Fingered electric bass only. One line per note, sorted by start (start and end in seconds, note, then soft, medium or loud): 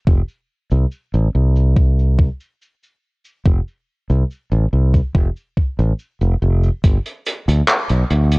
0.07 0.21 F1 medium
0.72 0.84 C2 medium
1.14 1.27 A1 medium
1.35 2.28 C2 medium
3.46 3.59 F1 medium
4.10 4.23 C2 medium
4.52 4.65 A1 medium
4.73 4.99 C2 medium
5.15 5.28 F1 medium
5.79 5.92 A1 medium
6.21 6.34 F1 medium
6.42 6.68 F1 medium
6.84 6.97 G1 loud
7.48 7.61 D2 medium
7.90 8.03 B1 medium
8.11 8.39 D2 medium